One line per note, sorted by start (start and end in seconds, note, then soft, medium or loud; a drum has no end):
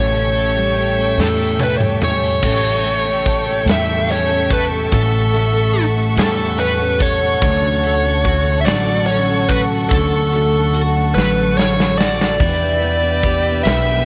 0.00 1.14 A1 medium
0.00 0.35 A2 medium
0.00 0.35 E3 medium
0.00 0.35 G3 medium
0.00 0.34 A3 medium
0.00 0.60 A3 medium
0.00 0.33 C#4 medium
0.00 0.32 A4 medium
0.00 0.35 A4 medium
0.00 2.40 A4 medium
0.00 1.99 C#5 medium
0.00 2.41 E5 medium
0.00 2.41 G5 medium
0.00 2.40 C#6 medium
0.15 0.77 C#4 medium
0.33 0.74 G3 soft
0.33 0.76 A3 soft
0.33 0.76 C#4 soft
0.33 0.76 A4 soft
0.33 closed hi-hat soft
0.57 1.80 G3 medium
0.75 1.18 G3 medium
0.75 1.17 A3 medium
0.75 1.17 C#4 medium
0.75 1.16 A4 medium
0.75 closed hi-hat medium
0.99 2.23 A3 medium
1.17 2.39 E2 medium
1.17 1.61 A2 medium
1.17 1.60 E3 medium
1.17 1.57 G3 medium
1.17 1.58 A3 medium
1.17 1.59 C#4 medium
1.17 1.59 A4 medium
1.17 1.58 A4 medium
1.17 snare medium
1.40 2.01 C#4 medium
1.58 2.01 G3 medium
1.58 2.01 A3 medium
1.58 2.01 C#4 medium
1.58 1.99 A4 medium
1.58 high tom medium
1.63 1.74 B4 medium
1.80 2.87 G3 medium
1.80 mid tom medium
2.00 2.42 G3 soft
2.00 2.43 A3 soft
2.00 2.43 C#4 soft
2.00 2.43 A4 medium
2.00 3.65 C#5 medium
2.00 mid tom medium
2.24 2.84 A3 medium
2.42 3.64 A1 medium
2.42 2.84 A2 medium
2.42 2.85 E3 medium
2.42 2.83 G3 medium
2.42 2.84 A3 medium
2.42 2.85 C#4 medium
2.42 7.38 A4 medium
2.42 2.86 A4 medium
2.42 7.38 E5 medium
2.42 4.90 G5 medium
2.42 12.37 C#6 medium
2.42 kick loud
2.42 crash medium
2.84 3.05 G3 medium
2.84 3.06 A3 medium
2.84 3.06 C#4 medium
2.84 3.04 A4 medium
2.84 ride soft
3.05 3.49 G3 soft
3.05 3.48 A3 medium
3.05 3.47 C#4 medium
3.05 3.45 A4 medium
3.26 4.51 A4 medium
3.26 kick medium
3.26 ride soft
3.47 3.67 G3 soft
3.47 3.67 A3 soft
3.47 3.68 C#4 soft
3.47 3.68 A4 medium
3.66 4.88 E2 medium
3.66 4.09 A2 medium
3.66 4.09 E3 medium
3.66 4.08 G3 medium
3.66 4.09 A3 medium
3.66 4.10 C#4 medium
3.66 4.10 A4 medium
3.66 snare loud
3.66 ride medium
3.71 4.11 E5 loud
4.09 4.30 G3 medium
4.09 4.30 A3 medium
4.09 4.29 C#4 medium
4.09 4.28 A4 medium
4.09 4.49 C#5 loud
4.09 snare soft
4.09 ride soft
4.29 4.73 G3 soft
4.29 4.72 A3 soft
4.29 4.71 C#4 medium
4.29 4.70 A4 medium
4.50 5.74 A4 medium
4.50 4.64 B4 medium
4.50 kick loud
4.50 ride soft
4.71 4.91 G3 soft
4.71 4.91 A3 soft
4.71 4.92 C#4 medium
4.71 4.92 A4 medium
4.91 6.13 A1 loud
4.91 5.33 A2 medium
4.91 5.34 E3 medium
4.91 5.32 G3 medium
4.91 5.33 A3 medium
4.91 5.34 C#4 medium
4.91 5.35 A4 loud
4.91 5.83 A4 medium
4.91 12.37 F#5 medium
4.91 kick loud
4.91 ride medium
5.33 5.55 G3 medium
5.33 5.55 A3 medium
5.33 5.54 C#4 medium
5.33 5.52 A4 medium
5.33 ride soft
5.53 5.97 G3 soft
5.53 5.96 A3 soft
5.53 5.95 C#4 medium
5.53 5.93 A4 medium
5.74 6.99 A4 medium
5.74 ride soft
5.95 6.17 G3 soft
5.95 6.17 A3 medium
5.95 6.17 C#4 medium
5.95 6.17 A4 medium
6.17 7.38 E2 medium
6.17 6.59 A2 medium
6.17 6.59 E3 medium
6.17 6.57 G3 medium
6.17 6.59 A3 medium
6.17 6.60 C#4 medium
6.17 6.57 A4 medium
6.17 6.60 A4 medium
6.17 snare loud
6.17 ride medium
6.58 6.80 G3 medium
6.58 6.80 A3 medium
6.58 6.80 C#4 medium
6.58 6.78 A4 medium
6.58 7.02 B4 medium
6.58 ride soft
6.79 7.23 G3 medium
6.79 7.22 A3 medium
6.79 7.21 C#4 medium
6.79 7.20 A4 medium
6.99 8.25 A4 medium
6.99 8.61 C#5 loud
6.99 kick medium
6.99 ride soft
7.21 7.42 G3 soft
7.21 7.42 A3 medium
7.21 7.42 C#4 medium
7.21 7.42 A4 medium
7.41 8.63 D2 loud
7.41 7.83 D3 medium
7.41 7.81 F#3 medium
7.41 7.83 A3 medium
7.41 7.84 C#4 medium
7.41 7.85 F#4 medium
7.41 12.37 A4 medium
7.41 kick loud
7.41 ride medium
7.83 8.04 F#3 medium
7.83 8.05 A3 medium
7.83 8.04 C#4 medium
7.83 8.02 F#4 medium
7.83 ride soft
8.03 8.47 A3 medium
8.03 8.46 C#4 medium
8.03 8.44 F#4 medium
8.25 9.48 F#4 medium
8.25 kick medium
8.25 ride soft
8.45 8.66 A3 soft
8.45 8.67 C#4 medium
8.45 8.67 F#4 medium
8.61 8.66 E5 medium
8.66 9.88 A1 loud
8.66 9.08 D3 medium
8.66 9.06 F#3 medium
8.66 9.08 A3 medium
8.66 9.09 F#4 medium
8.66 9.06 D5 loud
8.66 snare loud
8.66 ride medium
9.07 9.29 F#3 medium
9.07 9.30 A3 medium
9.07 9.30 C#4 medium
9.07 9.51 C#5 medium
9.07 ride soft
9.11 9.27 F#4 medium
9.29 9.72 A3 soft
9.29 9.70 C#4 medium
9.29 9.69 F#4 medium
9.49 10.72 F#4 medium
9.49 9.60 B4 medium
9.49 kick loud
9.49 ride soft
9.70 9.91 A3 soft
9.70 9.92 C#4 medium
9.70 9.91 F#4 medium
9.89 11.12 D2 loud
9.89 10.33 D3 medium
9.89 10.31 F#3 medium
9.89 10.32 A3 medium
9.89 10.33 C#4 medium
9.89 10.34 F#4 medium
9.89 10.80 A4 medium
9.89 kick loud
9.89 ride medium
10.32 10.53 F#3 medium
10.32 10.54 A3 medium
10.32 10.54 C#4 medium
10.32 10.52 F#4 medium
10.32 ride soft
10.53 10.97 A3 soft
10.53 10.96 C#4 soft
10.53 10.94 F#4 medium
10.73 11.97 F#4 medium
10.73 ride soft
10.95 11.15 A3 soft
10.95 11.16 C#4 soft
10.95 11.16 F#4 medium
11.15 12.37 A1 medium
11.15 11.58 D3 medium
11.15 11.55 F#3 medium
11.15 11.56 A3 medium
11.15 11.57 C#4 medium
11.15 11.59 F#4 medium
11.15 11.59 B4 medium
11.15 snare medium
11.56 11.78 F#3 medium
11.56 11.79 A3 medium
11.56 11.78 C#4 medium
11.56 11.76 F#4 medium
11.56 11.96 C#5 medium
11.56 snare medium
11.77 12.21 A3 soft
11.77 12.19 C#4 medium
11.77 12.18 F#4 medium
11.77 snare medium
11.98 12.49 F#4 medium
11.98 13.61 D5 loud
11.98 snare loud
12.19 12.40 A3 soft
12.19 12.41 C#4 soft
12.19 12.40 F#4 medium
12.19 snare medium
12.39 13.61 E2 loud
12.39 12.79 E3 medium
12.39 12.81 B3 medium
12.39 12.82 D4 medium
12.39 12.83 G4 medium
12.39 14.05 B4 medium
12.39 14.05 E5 medium
12.39 14.05 G5 medium
12.39 kick loud
12.39 splash medium
12.80 13.03 E3 medium
12.80 13.03 B3 medium
12.80 13.03 D4 medium
12.80 13.00 G4 medium
12.80 ride soft
13.02 13.46 B3 soft
13.02 13.45 D4 medium
13.02 13.42 G4 medium
13.23 14.05 G4 medium
13.23 kick medium
13.23 ride soft
13.44 13.64 B3 soft
13.44 13.65 D4 soft
13.44 13.65 G4 medium
13.64 14.05 B1 loud
13.64 14.05 E3 medium
13.64 14.05 B3 medium
13.64 14.05 D4 medium
13.64 14.05 G4 medium
13.64 14.03 E5 loud
13.64 snare loud
13.64 ride medium